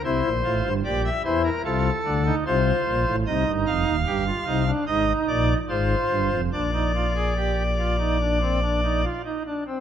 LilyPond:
<<
  \new Staff \with { instrumentName = "Pipe organ" } { \time 4/4 \key bes \mixolydian \tempo 4 = 74 << { c''4 d''16 e''16 c''16 bes'16 a'4 c''4 | ees''8 f''4. ees''8 d''8 c''4 | d''2.~ d''8 r8 | } \\ { e'8 f'8 g'8 e'8 f'8 d'16 ees'16 f'4 | ees'4 g'16 f'16 ees'16 d'16 ees'4 f'4 | d'16 ees'16 f'16 aes'16 g'8 f'16 ees'16 d'16 c'16 d'16 ees'16 f'16 ees'16 d'16 c'16 | } >> }
  \new Staff \with { instrumentName = "Pipe organ" } { \clef bass \time 4/4 \key bes \mixolydian <c, c>16 <bes,, bes,>16 <a,, a,>16 <g,, g,>16 <bes,, bes,>8 <e, e>8 <c, c>8 <d, d>8 <c, c>8 <bes,, bes,>16 <a,, a,>16 | <c, c>16 <g,, g,>16 <f,, f,>16 <ees,, ees,>16 <g,, g,>8 <c, c>8 <aes,, aes,>8 <bes,, bes,>8 <aes,, aes,>8 <g,, g,>16 <f,, f,>16 | <bes,, bes,>2.~ <bes,, bes,>8 r8 | }
>>